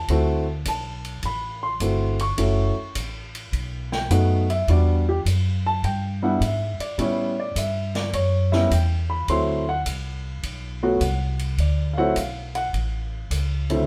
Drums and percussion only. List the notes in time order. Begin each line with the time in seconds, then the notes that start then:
0.08 kick, ride
0.65 kick, hi-hat pedal, ride
1.05 ride
1.23 kick, ride
1.80 kick, hi-hat pedal, ride
2.19 ride
2.38 kick, ride
2.95 kick, hi-hat pedal, ride
3.35 ride
3.53 kick, ride
3.92 snare
4.10 kick, hi-hat pedal, ride
4.50 ride
4.68 kick, ride
5.26 kick, hi-hat pedal, ride
5.83 kick, ride
6.41 kick, hi-hat pedal, ride
6.80 ride
6.98 kick, ride
7.56 kick, hi-hat pedal, ride
7.95 snare, ride
8.13 kick, ride
8.53 snare
8.71 kick, hi-hat pedal, ride
9.28 kick, ride
9.86 kick, hi-hat pedal, ride
10.43 kick, ride
11.01 kick, hi-hat pedal, ride
11.39 ride
11.58 kick, ride
12.16 kick, hi-hat pedal, ride
12.55 ride
12.73 kick, ride
13.31 kick, hi-hat pedal, ride
13.70 ride